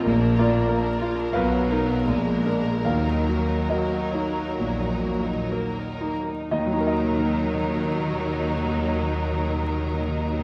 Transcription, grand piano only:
0.06 1.31 A#1 medium
0.38 0.88 A#3 soft
0.38 1.00 F4 soft
0.38 0.67 A#4 soft
0.38 1.32 D5 medium
0.68 1.21 A#4 soft
1.02 1.35 F4 soft
1.33 2.04 B1 medium
1.33 1.71 A#4 soft
1.33 2.80 B4 medium
1.33 2.79 F5 medium
1.72 2.04 D#4 soft
1.72 2.04 A#4 soft
2.08 2.83 A#1 soft
2.45 2.81 D4 soft
2.45 2.81 A#4 soft
2.85 4.53 D#2 soft
2.85 3.66 A#4 soft
2.85 3.65 F5 soft
3.28 3.96 F#3 soft
3.70 5.49 F#4 soft
3.70 4.40 A#4 soft
3.70 5.48 D#5 soft
4.14 4.85 D#4 soft
4.59 5.33 A#2 soft
5.05 5.82 F#3 soft
5.52 6.32 A#4 soft
6.01 6.51 D#4 soft
6.51 10.43 D#2 soft
6.51 6.71 D#4 soft
6.51 6.85 D#5 soft
6.58 10.43 D#3 soft
6.66 10.43 F#3 soft
6.73 10.43 D#4 soft
6.80 10.43 A#4 soft
6.87 10.43 D#5 soft

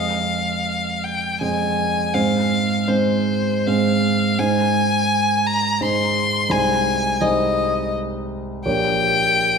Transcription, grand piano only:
0.00 1.37 F2 soft
0.00 1.37 G#3 soft
0.00 1.37 C4 soft
0.00 1.37 G#4 soft
1.41 2.12 F2 soft
1.41 2.12 G#3 soft
1.41 2.12 C4 soft
1.41 2.12 G#4 soft
2.14 2.86 G#2 soft
2.14 2.86 G#3 soft
2.14 2.86 C4 soft
2.14 2.86 C5 soft
2.88 3.65 G#2 soft
2.88 3.65 G#3 soft
2.88 3.65 C4 soft
2.88 3.65 C5 soft
3.67 4.38 G#2 soft
3.67 4.38 G#3 soft
3.67 4.38 C4 soft
3.67 4.37 C5 soft
4.39 5.78 G#2 soft
4.39 5.78 G#3 soft
4.39 5.78 D#4 soft
4.39 5.78 C5 soft
5.81 6.48 G#2 soft
5.81 6.48 G#3 soft
5.81 6.48 D#4 soft
5.81 6.48 C5 soft
6.49 7.19 C2 soft
6.49 7.19 G#3 soft
6.49 7.19 D#4 soft
6.49 7.19 C5 soft
7.21 8.62 C2 soft
7.21 8.62 G#3 soft
7.21 8.62 D#4 soft
7.21 8.62 C5 soft
8.66 9.58 A#1 soft
8.66 9.58 A#3 soft
8.66 9.58 G4 soft
8.66 9.58 C#5 soft

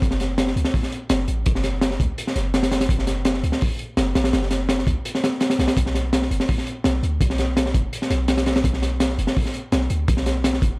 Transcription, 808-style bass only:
0.02 0.55 F#1 loud
0.56 0.64 C#2 loud
1.10 1.26 F#1 medium
1.28 1.44 A1 medium
1.47 1.99 F#1 loud
2.00 2.08 C#2 loud
2.36 2.88 F#1 loud
2.89 3.42 F#1 loud
3.43 3.52 C#2 loud
3.97 4.14 F#1 medium
4.15 4.32 A1 medium
4.33 4.86 F#1 loud
4.87 4.95 C#2 loud
5.59 5.67 B1 loud
5.77 6.29 B1 loud
6.31 6.39 F#1 loud
6.85 7.01 B1 medium
7.03 7.19 D2 medium
7.21 7.73 B1 loud
7.75 7.83 F#1 loud
8.11 8.63 B1 loud
8.64 9.17 B1 loud
9.18 9.26 F#1 loud
9.72 9.88 B1 medium
9.90 10.06 D2 medium
10.08 10.61 B1 loud
10.62 10.70 F#1 loud

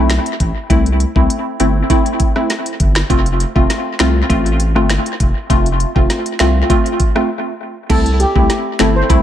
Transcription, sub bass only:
0.00 0.19 B1 medium
0.40 0.52 A1 loud
0.70 1.05 C2 loud
1.16 1.26 C2 loud
1.60 1.83 G1 medium
2.80 3.03 G1 loud
3.10 3.45 F1 loud
3.56 3.67 F1 loud
4.00 4.23 C2 medium
4.30 4.77 A1 medium
4.76 4.99 G1 medium
5.20 5.32 F1 loud
5.50 5.85 F1 loud
5.96 6.07 F1 loud
6.40 6.63 C2 medium
7.90 8.25 C2 loud
8.36 8.46 C2 loud
8.80 9.03 G1 loud
9.10 9.22 C2 loud

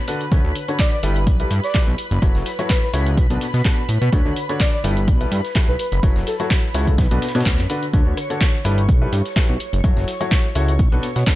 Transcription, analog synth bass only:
0.32 0.41 D2 medium
0.44 0.53 D2 loud
1.03 1.28 G1 medium
1.27 1.45 B1 medium
1.51 1.60 G2 medium
1.87 1.95 B1 medium
2.11 2.19 F#1 loud
2.22 2.32 F#1 loud
2.35 2.43 F#1 loud
2.93 3.19 C#2 medium
3.17 3.27 B1 loud
3.30 3.38 B1 medium
3.54 3.62 B2 medium
3.89 3.98 A2 medium
4.02 4.10 B2 medium
4.13 4.22 D2 loud
4.25 4.34 D2 loud
4.84 5.09 G1 medium
5.08 5.26 B1 medium
5.32 5.41 G2 medium
5.68 5.76 B1 medium
5.92 6.00 F#1 loud
6.03 6.13 F#1 loud
6.16 6.24 F#1 loud
6.74 7.00 C#2 medium
6.98 7.08 B1 loud
7.11 7.19 B1 medium
7.35 7.43 B2 medium
7.46 7.60 D2 loud
7.59 7.67 F#2 medium
7.93 8.03 D2 medium
8.06 8.15 D2 loud
8.65 8.90 G1 medium
8.89 9.07 B1 loud
9.13 9.22 G2 medium
9.49 9.57 B1 medium
9.73 9.81 F#1 loud
9.84 9.94 F#1 loud
9.97 10.05 F#1 loud
10.56 10.81 C#2 medium
10.79 10.89 B1 loud
10.92 11.00 B1 medium
11.16 11.24 B2 medium

